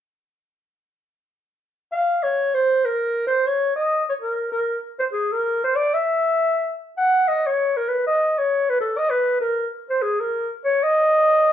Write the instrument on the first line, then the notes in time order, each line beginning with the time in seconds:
clarinet
1.92 F5
2.23 C#5
2.55 C5
2.85 A#4
3.27 C5
3.47 C#5
3.76 D#5
4.09 C#5
4.21 A#4
4.52 A#4
5.00 C5
5.13 G#4
5.32 A#4
5.64 C5
5.76 D5
5.94 E5
6.97 F#5
7.28 D#5
7.47 C#5
7.77 A#4
7.89 B4
8.07 D#5
8.38 C#5
8.70 B4
8.81 A4
8.98 D#5
9.10 B4
9.41 A#4
9.90 C5
10.02 G#4
10.20 A#4
10.65 C#5
10.83 D#5